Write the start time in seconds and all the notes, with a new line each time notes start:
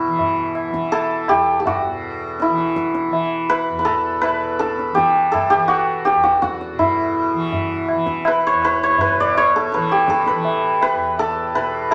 Already playing: E2 B2 E3 E4 F#4 A4
0.07 E3
0.19 tabla tin, tabla ge
0.55 tabla na
0.68 E3
0.74 tabla ke
0.92 A4, tabla na
1.27 E2 G4, tabla na
1.60 G4
1.66 F#4, tabla tin, tabla ge
1.89 B2
2.40 E4, tabla te
2.50 E3
2.58 tabla te
2.76 tabla ke
2.95 tabla te
3.08 E3
3.13 tabla tin
3.49 B4, tabla na
3.70 E2
3.79 B4
3.85 A4, tabla tin
4.21 B4, tabla na
4.31 B2
4.59 A4, tabla te
4.79 tabla te
4.92 E3 G4
4.98 tabla ke
5.16 tabla te
5.32 A4, tabla na, tabla ge
5.50 G4
5.55 E3
5.68 F#4, tabla te
6.05 G4, tabla te
6.14 E2
6.23 F#4, tabla te
6.42 F#4, tabla ke
6.61 tabla te
6.73 B2
6.79 E4, tabla tin, tabla ge
7.33 E3
7.52 tabla tin, tabla ge
7.89 tabla na
7.93 E3
8.07 tabla ke
8.25 B4, tabla na
8.47 C#5
8.53 E2
8.62 B4, tabla na
8.83 C#5
8.98 B4, tabla tin, tabla ge
9.13 B2
9.20 D5
9.35 C#5, tabla na
9.56 A4
9.72 E3 B4, tabla te
9.90 G4, tabla te
10.08 A4, tabla ke
10.26 B4, tabla te
10.35 E3
10.45 tabla tin
10.81 B4, tabla na
10.94 E2
11.18 A4, tabla tin
11.55 B2 B4, tabla na
11.91 tabla na